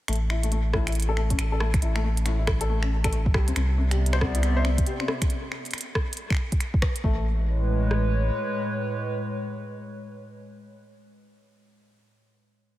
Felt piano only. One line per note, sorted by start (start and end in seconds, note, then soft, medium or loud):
0.08 0.14 A3 medium
0.30 0.39 E4 medium
0.43 0.47 A3 medium
0.52 0.57 A3 medium
0.73 0.86 A2 medium
0.87 0.92 E4 medium
1.09 1.17 A4 medium
1.17 1.30 A3 medium
1.30 1.34 C#4 medium
1.52 1.58 A4 medium
1.60 1.66 A3 medium
1.82 1.91 E4 medium
1.96 1.99 A3 medium
2.04 2.09 A3 medium
2.26 2.38 A2 medium
2.39 2.45 E4 medium
2.61 2.69 A4 loud
2.69 2.82 A3 medium
2.83 2.86 C#4 medium
3.04 3.10 A4 loud
3.13 3.18 A3 medium
3.34 3.43 G4 medium
3.48 3.51 C4 medium
3.56 3.61 C4 medium
3.78 3.91 C3 medium
3.91 3.97 G4 medium
4.13 4.21 C5 medium
4.21 4.34 C4 medium
4.35 4.38 E4 medium
4.57 4.62 C5 loud
4.65 4.70 C4 medium
4.87 4.95 G4 medium
5.00 5.03 C4 medium
5.08 5.14 C4 medium
7.04 7.24 A3 medium